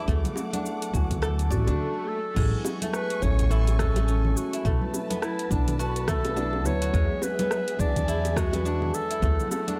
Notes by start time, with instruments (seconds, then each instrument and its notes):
Already playing: felt piano F#3 G#4, guzheng G#3 B3 D4 E4 F#4, string section D6
0.06 upright bass D2, felt piano F#3 B3 E4 G#4, string section A3 F#5, guzheng A3, kick, shaker
0.24 closed hi-hat, high conga, shaker
0.36 high bongo, shaker
0.53 guzheng D4, closed hi-hat, high conga, shaker
0.66 shaker
0.82 closed hi-hat, shaker
0.91 upright bass D2, felt piano F#3 B3 E4, guzheng F#4, kick, high conga, shaker
0.95 felt piano G#5
1.11 kick, closed hi-hat, low conga, shaker
1.22 guzheng A4, cross-stick, swell, shaker
1.39 closed hi-hat, shaker
1.50 upright bass A1, clarinet F#4, guzheng D5, kick, low conga, shaker
1.67 upright bass D2, guzheng D4, closed hi-hat, high bongo, shaker
2.08 clarinet A4
2.34 upright bass A1, felt piano F#3 B3 E4, guzheng G#3, string section G#5 C#6, kick, crash, shaker
2.38 felt piano G#4
2.65 high bongo, shaker
2.82 guzheng A3, closed hi-hat, high conga, shaker
2.93 clarinet B4, cross-stick, shaker
3.10 closed hi-hat
3.20 upright bass A1, felt piano F#3 B3 E4, guzheng C#4, clarinet C#5, kick, high conga, shaker
3.24 felt piano A4
3.39 kick, closed hi-hat, low conga, shaker
3.51 guzheng E4, clarinet A4, shaker
3.67 closed hi-hat, high bongo, shaker
3.79 guzheng G#3, clarinet A4, kick, cross-stick, high bongo, shaker
3.96 guzheng A3, closed hi-hat, high bongo, high conga, shaker
4.08 guzheng C#4, shaker
4.25 low conga
4.37 clarinet F#4, shaker
4.53 guzheng E4, closed hi-hat, shaker
4.63 upright bass B1, felt piano F#3 B3 E4, guzheng A3, string section B4 A5, kick, shaker
4.67 felt piano A4
4.82 high conga
4.94 high bongo, shaker
5.10 guzheng B3, closed hi-hat, high conga, shaker
5.22 clarinet E4, cross-stick, shaker
5.39 closed hi-hat
5.49 upright bass B1, felt piano F#3 B3 E4, guzheng D4, clarinet D4, kick, high conga, shaker
5.53 felt piano A4
5.68 closed hi-hat, low conga, shaker
5.79 guzheng F#4, clarinet F#4, shaker
5.96 closed hi-hat, shaker
6.08 guzheng A3, clarinet A4, kick, cross-stick, low conga, shaker
6.25 guzheng B3, closed hi-hat, high bongo, shaker
6.36 felt piano F#3 B3 E4 A4, guzheng D4, high bongo, shaker
6.53 high bongo
6.64 upright bass D2, felt piano F#3 B3 E4 B4, clarinet C#5, high bongo, shaker
6.82 guzheng F#4, closed hi-hat, shaker
6.92 upright bass E2, felt piano F#3 B3 G#4, guzheng G#3, string section G#4 E5, kick, shaker
7.22 clarinet B4, high bongo, shaker
7.39 guzheng B3, closed hi-hat, high conga, shaker
7.51 cross-stick, shaker
7.68 closed hi-hat
7.77 upright bass E2, felt piano F#3 B3 E4 G#4, guzheng D4, clarinet D5, kick, high conga, shaker
7.96 kick, closed hi-hat, low conga, shaker
8.08 guzheng E4, shaker
8.25 closed hi-hat, high bongo, shaker
8.36 guzheng G#3, clarinet F#4, kick, cross-stick, high bongo, shaker
8.53 guzheng B3, closed hi-hat, high bongo, high conga, shaker
8.65 guzheng D4, shaker
8.82 low conga
8.94 clarinet A4, shaker
9.10 guzheng E4, closed hi-hat, shaker
9.21 upright bass D2, felt piano F#3 B3 E4 G#4, guzheng A3, string section A3 F#5, kick, shaker
9.39 high conga, shaker
9.51 clarinet A4, high bongo, shaker
9.68 guzheng D4, closed hi-hat, high conga, shaker